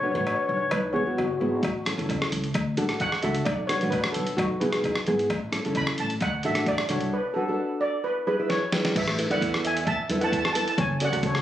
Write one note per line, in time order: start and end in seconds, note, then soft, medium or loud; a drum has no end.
0.03 0.10 D4 medium
0.03 0.10 F#4 medium
0.03 0.10 B4 medium
0.03 0.10 C#5 medium
0.12 0.33 A1 loud
0.12 0.63 D4 medium
0.12 0.63 F#4 medium
0.12 0.63 B4 medium
0.12 0.19 C#5 medium
0.21 0.27 C#5 medium
0.27 0.33 C#5 medium
0.27 cowbell medium
0.34 0.41 C#5 medium
0.42 0.48 C#5 medium
0.49 0.67 B1 medium
0.49 0.56 C#5 medium
0.57 0.64 C#5 medium
0.71 0.90 B1 medium
0.71 0.95 B4 medium
0.71 cowbell loud
0.93 1.16 E1 medium
0.93 1.01 B3 medium
0.93 1.01 E4 medium
0.93 1.01 G#4 medium
0.93 1.17 C#5 medium
1.06 1.27 B3 medium
1.06 1.27 E4 medium
1.06 1.27 F#4 medium
1.17 1.39 F#1 medium
1.17 1.24 F#4 medium
1.17 cowbell medium
1.25 1.32 F#4 medium
1.33 1.38 F#4 medium
1.40 1.61 G#1 medium
1.40 1.63 B3 medium
1.40 1.63 E4 medium
1.40 1.47 F#4 medium
1.40 1.64 G#4 medium
1.49 1.54 F#4 medium
1.55 1.61 F#4 medium
1.62 1.90 A1 medium
1.62 1.70 F#4 medium
1.62 kick loud
1.62 closed hi-hat medium
1.62 cowbell loud
1.72 1.79 F#4 soft
1.86 1.94 C#4 medium
1.86 1.94 E4 medium
1.86 1.94 A4 medium
1.86 cross-stick medium
1.86 closed hi-hat medium
1.98 2.16 F#1 medium
1.98 2.46 C#4 medium
1.98 2.47 E4 medium
1.98 2.47 A4 medium
1.98 closed hi-hat medium
2.09 kick medium
2.09 closed hi-hat medium
2.09 cowbell medium
2.22 cross-stick medium
2.32 2.50 C#2 medium
2.32 closed hi-hat medium
2.44 closed hi-hat medium
2.54 2.73 D2 medium
2.54 kick loud
2.54 closed hi-hat medium
2.54 cowbell medium
2.77 3.14 A1 medium
2.77 2.85 D4 medium
2.77 2.85 F#4 medium
2.77 2.85 A4 medium
2.77 closed hi-hat medium
2.88 3.10 D4 medium
2.88 3.10 F#4 medium
2.88 3.10 A4 medium
2.88 cross-stick medium
2.88 closed hi-hat medium
3.00 3.25 F#5 loud
3.00 kick medium
3.00 closed hi-hat medium
3.00 cowbell medium
3.12 cross-stick medium
3.23 3.42 C#2 loud
3.23 3.46 D4 medium
3.23 3.47 F#4 medium
3.23 3.47 A4 medium
3.23 3.47 E5 medium
3.23 closed hi-hat medium
3.35 closed hi-hat medium
3.45 3.74 B1 loud
3.45 3.69 D5 medium
3.45 kick loud
3.45 closed hi-hat medium
3.45 cowbell loud
3.67 3.77 D4 medium
3.67 3.77 F#4 medium
3.67 3.77 B4 medium
3.67 3.92 C#5 loud
3.67 cross-stick medium
3.67 closed hi-hat medium
3.81 4.00 A1 medium
3.81 4.30 D4 medium
3.81 4.30 F#4 medium
3.81 4.30 B4 medium
3.81 closed hi-hat medium
3.90 4.13 B4 loud
3.90 kick medium
3.90 closed hi-hat medium
3.90 cowbell medium
4.04 cross-stick loud
4.12 4.34 B1 medium
4.12 4.38 A4 medium
4.12 closed hi-hat medium
4.27 closed hi-hat medium
4.37 4.56 B1 medium
4.37 4.61 F#4 medium
4.37 kick loud
4.37 closed hi-hat medium
4.37 cowbell medium
4.60 4.97 B1 medium
4.60 4.69 B3 medium
4.60 4.69 E4 medium
4.60 4.69 G#4 medium
4.60 4.82 B4 medium
4.60 closed hi-hat medium
4.73 4.94 B3 medium
4.73 4.94 E4 medium
4.73 4.94 G#4 medium
4.73 cross-stick medium
4.73 closed hi-hat medium
4.84 kick medium
4.84 closed hi-hat medium
4.84 cowbell medium
4.95 cross-stick medium
5.07 5.25 G#1 loud
5.07 5.30 B3 medium
5.07 5.30 E4 medium
5.07 5.30 G#4 loud
5.07 closed hi-hat medium
5.19 closed hi-hat medium
5.30 5.57 A1 loud
5.30 kick loud
5.30 closed hi-hat medium
5.30 cowbell loud
5.52 5.60 C#4 medium
5.52 5.60 E4 medium
5.52 5.60 A4 medium
5.52 cross-stick medium
5.52 closed hi-hat medium
5.65 5.83 F#1 medium
5.65 6.13 C#4 medium
5.65 6.13 E4 medium
5.65 6.13 A4 medium
5.65 closed hi-hat medium
5.75 5.98 B5 loud
5.75 kick medium
5.75 closed hi-hat medium
5.75 cowbell medium
5.87 cross-stick medium
5.98 6.16 A1 medium
5.98 6.23 A5 loud
5.98 closed hi-hat medium
6.10 closed hi-hat medium
6.21 6.39 D2 medium
6.21 6.45 F#5 loud
6.21 kick loud
6.21 closed hi-hat medium
6.21 cowbell medium
6.43 6.80 A1 medium
6.43 6.52 D4 medium
6.43 6.52 F#4 medium
6.43 6.52 A4 medium
6.43 6.68 E5 loud
6.43 closed hi-hat medium
6.55 6.77 D4 medium
6.55 6.77 F#4 medium
6.55 6.77 A4 medium
6.55 cross-stick medium
6.55 closed hi-hat medium
6.66 6.91 D5 loud
6.66 kick medium
6.66 closed hi-hat medium
6.66 cowbell medium
6.78 cross-stick medium
6.89 7.08 C2 loud
6.89 7.13 D4 medium
6.89 7.12 F#4 medium
6.89 7.13 A4 medium
6.89 7.13 C#5 medium
6.89 closed hi-hat medium
7.01 closed hi-hat medium
7.13 7.37 B4 medium
7.34 7.43 D4 medium
7.34 7.43 F#4 medium
7.34 7.56 A4 medium
7.34 7.43 B4 medium
7.48 7.96 D4 medium
7.48 7.96 F#4 medium
7.48 7.96 A4 medium
7.81 8.05 D5 loud
8.04 8.26 B4 medium
8.27 8.34 E4 medium
8.27 8.35 G#4 medium
8.27 8.51 B4 loud
8.27 8.35 B4 medium
8.39 8.60 E4 medium
8.39 8.60 G#4 medium
8.39 8.60 B4 medium
8.49 8.92 C#5 loud
8.49 snare medium
8.72 8.96 E4 medium
8.72 8.96 G#4 medium
8.72 8.96 B4 medium
8.72 snare loud
8.85 snare medium
8.96 9.23 A1 loud
8.96 9.29 B4 medium
8.96 9.32 E5 medium
8.96 kick loud
8.96 closed hi-hat medium
8.96 crash loud
9.08 cross-stick medium
9.18 9.26 E4 medium
9.18 9.26 A4 medium
9.18 9.26 B4 medium
9.18 closed hi-hat medium
9.30 9.92 E2 medium
9.30 9.78 E4 medium
9.30 9.78 A4 medium
9.30 9.79 B4 medium
9.30 9.62 D5 medium
9.30 9.62 F#5 loud
9.30 closed hi-hat medium
9.42 kick medium
9.42 closed hi-hat medium
9.54 cross-stick medium
9.65 9.84 E5 medium
9.65 9.89 G#5 loud
9.65 closed hi-hat medium
9.77 closed hi-hat medium
9.86 10.19 E5 medium
9.86 10.23 A5 loud
9.86 kick loud
9.86 closed hi-hat medium
10.10 10.63 E2 medium
10.10 10.17 E4 medium
10.10 10.17 A4 medium
10.10 10.17 B4 medium
10.10 closed hi-hat medium
10.21 10.42 E4 medium
10.21 10.42 A4 medium
10.21 10.42 B4 medium
10.21 10.28 F#5 medium
10.21 10.30 A5 loud
10.21 closed hi-hat medium
10.31 10.37 A5 medium
10.31 kick medium
10.31 closed hi-hat medium
10.38 10.45 A5 loud
10.45 10.52 A5 medium
10.45 cross-stick medium
10.53 10.78 E4 medium
10.53 10.78 A4 medium
10.53 10.78 B4 medium
10.53 10.60 A5 loud
10.53 closed hi-hat loud
10.62 10.68 A5 medium
10.68 10.75 A5 medium
10.68 closed hi-hat medium
10.78 11.05 F#1 loud
10.78 10.99 C#5 medium
10.78 11.02 G#5 loud
10.78 kick loud
10.78 closed hi-hat medium
11.00 11.08 C#4 medium
11.00 11.08 F#4 medium
11.00 11.08 A4 medium
11.00 11.23 D5 medium
11.00 closed hi-hat loud
11.05 11.24 F#5 loud
11.12 11.42 C#2 loud
11.12 11.42 C#4 medium
11.12 11.42 F#4 medium
11.12 11.42 A4 medium
11.12 closed hi-hat medium
11.23 11.31 A4 medium
11.23 11.32 C#5 medium
11.23 kick medium
11.23 closed hi-hat medium
11.35 11.40 C#5 medium
11.35 cross-stick medium